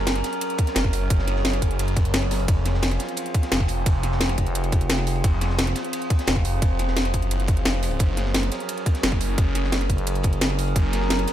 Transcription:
Already playing: F#1 F#3 C#4 G#4 A#4
0.07 snare, closed hi-hat, ride
0.15 snare, closed hi-hat, ride
0.24 snare, closed hi-hat, ride
0.33 closed hi-hat
0.41 closed hi-hat, ride
0.50 closed hi-hat
0.58 kick, closed hi-hat, ride
0.67 snare, closed hi-hat
0.75 F#1, snare, closed hi-hat, ride
0.84 kick, snare
0.93 open hi-hat, ride
1.10 F#1, kick, closed hi-hat, ride
1.19 snare
1.28 snare, closed hi-hat, ride
1.36 snare
1.45 snare, closed hi-hat, ride
1.53 snare, closed hi-hat, ride
1.62 F#1, kick, closed hi-hat, ride
1.71 closed hi-hat
1.79 F#1, closed hi-hat, ride
1.88 closed hi-hat, ride
1.96 kick, closed hi-hat, ride
2.05 closed hi-hat
2.14 snare, closed hi-hat, ride
2.22 snare
2.31 snare, open hi-hat, ride
2.39 ride
2.48 F1 F3 C4 F4 G#4, kick, closed hi-hat, ride
2.65 snare, closed hi-hat, ride
2.74 snare
2.82 snare, closed hi-hat, ride
2.91 snare, closed hi-hat, ride
2.99 snare, closed hi-hat, ride
3.09 closed hi-hat
3.17 closed hi-hat, ride
3.26 closed hi-hat
3.34 kick, closed hi-hat, ride
3.43 snare, closed hi-hat
3.52 F1, snare, closed hi-hat, ride
3.60 kick, snare
3.68 open hi-hat, ride
3.86 F1, kick, closed hi-hat, ride
4.03 snare, closed hi-hat, ride
4.12 snare
4.20 snare, closed hi-hat, ride
4.29 snare, closed hi-hat, ride
4.37 F1, kick, closed hi-hat, ride
4.47 closed hi-hat
4.55 closed hi-hat, ride
4.64 closed hi-hat, ride
4.72 kick, closed hi-hat, ride
4.81 closed hi-hat
4.90 snare, closed hi-hat, ride
4.98 snare
5.07 open hi-hat, ride
5.16 ride
5.24 F1, kick, closed hi-hat, ride
5.41 snare, closed hi-hat, ride
5.50 snare
5.58 snare, closed hi-hat, ride
5.67 snare, closed hi-hat, ride
5.75 snare, closed hi-hat, ride
5.84 closed hi-hat
5.93 closed hi-hat, ride
6.02 closed hi-hat
6.10 kick, closed hi-hat, ride
6.19 snare, closed hi-hat
6.27 F1, snare, closed hi-hat, ride
6.36 kick, snare
6.45 open hi-hat, ride
6.62 F1, kick, closed hi-hat, ride
6.79 snare, closed hi-hat, ride
6.87 snare
6.96 snare, closed hi-hat, ride
7.05 snare, closed hi-hat, ride
7.14 F#1, kick, closed hi-hat, ride
7.22 closed hi-hat
7.31 closed hi-hat, ride
7.40 closed hi-hat, ride
7.47 kick, closed hi-hat, ride
7.57 closed hi-hat
7.65 F1, snare, closed hi-hat, ride
7.74 snare
7.83 open hi-hat, ride
7.91 ride
7.99 F#1 F#3 C#4 G#4 A#4, kick, closed hi-hat, ride
8.17 snare, closed hi-hat, ride
8.25 snare
8.34 snare, closed hi-hat, ride
8.43 snare, closed hi-hat, ride
8.52 snare, closed hi-hat, ride
8.60 closed hi-hat
8.69 closed hi-hat, ride
8.78 closed hi-hat
8.86 kick, closed hi-hat, ride
8.94 snare, closed hi-hat
9.03 F#1, snare, closed hi-hat, ride
9.12 kick, snare
9.20 open hi-hat, ride
9.38 F#1, kick, closed hi-hat, ride
9.55 snare, closed hi-hat, ride
9.64 snare
9.72 snare, closed hi-hat, ride
9.81 snare, closed hi-hat, ride
9.89 F#1, kick, closed hi-hat, ride
9.98 closed hi-hat
10.07 closed hi-hat, ride
10.15 closed hi-hat, ride
10.23 kick, closed hi-hat, ride
10.33 closed hi-hat
10.41 snare, closed hi-hat, ride
10.50 snare
10.59 open hi-hat, ride
10.68 ride
10.75 F#1, kick, closed hi-hat, ride
10.93 snare, closed hi-hat, ride
11.01 snare
11.10 snare, closed hi-hat, ride
11.19 snare, closed hi-hat, ride
11.27 snare, closed hi-hat, ride

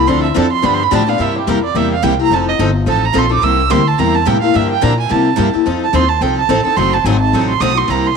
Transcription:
0.07 D2 D3 F3 C4 D4 A4 C6
0.23 E5
0.34 F2 D3 F3 C4 D4 A4 A5
0.52 C6
0.62 G2 D3 F3 B3 D4 G4 B5
0.74 C6
0.83 B5
0.91 A2 D3 F3 B3 D4 G4 A5
1.07 B3 D4 G4 F5
1.18 G2 C3 G3 A#3 E4 G4 E5
1.38 G4
1.47 F2 C3 G3 A#3 E4 G4 A#4
1.64 D5
1.74 E2 C3 G3 A#3 E4 G4 E5
1.94 F5
2.03 C2 C3 G3 A#3 E4 G4 G5
2.19 A#3 E4 G4 A#5
2.30 F1 F3 C4 D#4 A4 A5
2.48 D#5
2.59 G1 F3 C4 D#4 A4
2.86 A1 F3 C4 D#4 A4 A5
3.05 A#5
3.13 A#1 F3 C4 D#4 A4
3.18 C6
3.29 C4 D#4 A4 D6
3.42 C2 C3 G3 A#3 E4 G4 E6
3.70 D2 C3 G3 A#3 E4 G4 C6
3.87 A5
3.98 E2 C3 G3 A#3 E4 G4 A#5
4.14 A5
4.25 A2 C3 G3 A#3 E4 G4 G5
4.41 A#3 E4 G4 F5
4.54 G2 D3 F3 A#3 D4 G4 E5
4.71 G5
4.81 A#2 D3 F3 A#3 D4 G4 A#5
5.00 G#5
5.09 C3 G3 A#3 E4 G4 A5
5.37 G2 C3 G3 A#3 E4 G4
5.53 A#3 E4 G4, muted upright bass stroke
5.66 F2 F3 C4 D#4 A4
5.83 A5
5.93 D#2 F3 C4 D#4 A4 C6
6.09 A5
6.21 C2 F3 C4 D#4 A4 G5
6.38 A5
6.49 A1 F3 C4 D#4 A4
6.64 C4 D#4 A4 A5, muted upright bass stroke
6.76 F#1 C3 F#3 A3 C4 D#4 F#4 A4 C6
6.93 A5
7.04 G#1 C3 F#3 A3 C4 D#4 F#4 A4 G#5
7.20 A5
7.33 A1 C3 F#3 A3 C4 D#4 F#4 A4
7.49 C6
7.60 B1 C3 F#3 A3 C4 D#4 F#4 A4 D#6
7.75 A3 D#4 F#4 C6
7.87 C2 C3 G3 A#3 E4 G4 A#5
8.07 C6

